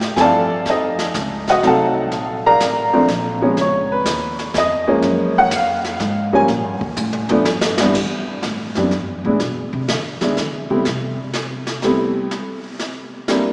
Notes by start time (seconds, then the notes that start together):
Already playing: A2 G4 G5
0.01 snare
0.16 G2 F3 A3 C4 E4 G#5, kick, snare
0.20 A4 D5 F5 A5
0.65 F2, brush sweep, kick, snare
0.70 D#4 A4 C5 D#5
0.99 snare
1.14 C#2, kick, snare, hi-hat pedal
1.48 F#4 C5 D#5 F#5, snare
1.63 C2 F#3 A3 C4 D#4, kick, snare
1.67 A4 F5 F#5 A5
2.11 A#1, brush sweep, kick, snare
2.46 A#4 D5 F5 A#5
2.60 A1, kick, snare, hi-hat pedal
2.93 F3 A3 C4 D4
3.08 A#1, kick, snare
3.42 F3 G#3 B3 C#4
3.57 C#2, brush sweep, kick, snare
3.61 C#5
3.92 B4
4.05 D#2, kick, snare, hi-hat pedal
4.39 snare
4.54 F2 D#5, kick, snare
4.87 F3 G#3 A#3 C#4
5.02 F#2, brush sweep, kick, snare
5.38 F#5
5.51 F2, kick, snare, hi-hat pedal
5.55 F5
5.84 snare
6.00 G#2, kick, snare
6.33 F3 G3 A#3 C#4 G#5
6.48 A#2, brush sweep, kick, snare
6.64 G2
6.80 D#2, kick
6.97 A2, hi-hat pedal, mid tom
7.13 mid tom
7.29 F3 A3 B3 D4, mid tom
7.45 G2, snare
7.61 snare
7.78 C2 E3 G3 B3 D4, snare
7.94 brush sweep, kick, snare, crash
8.42 A2, snare
8.75 F#2 E3 G3 B3 C4 D4, snare
8.91 G2, snare
9.25 A2 E3 G#3 B3 D4 E4
9.40 B2, brush sweep, snare
9.73 C3
9.88 D3, snare
10.21 D#3 E3 G#3 B3 D4 E4, snare
10.37 D3, snare
10.70 C#3 G3 A3 B3 C4 E4
10.85 C3, brush sweep, snare
11.33 snare
11.67 snare
11.82 G3 A3 B3 C4 E4, snare
12.31 brush sweep, snare
12.79 snare
13.28 G3 A#3 C4 D4 E4, snare